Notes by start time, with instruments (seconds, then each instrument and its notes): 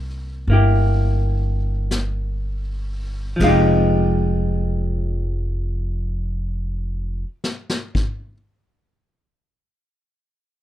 Already playing: upright bass C2, hollow-body jazz guitar A#3 E4 G4
0.47 upright bass G1, hollow-body jazz guitar A#3 E4, brush sweep
0.53 hollow-body jazz guitar G4
1.91 brush sweep, snare, hi-hat pedal
3.36 upright bass F1, hollow-body jazz guitar F3, kick, ride
3.41 hollow-body jazz guitar G#3 D#4 F5
3.48 hollow-body jazz guitar G4
7.44 snare
7.70 snare
7.95 kick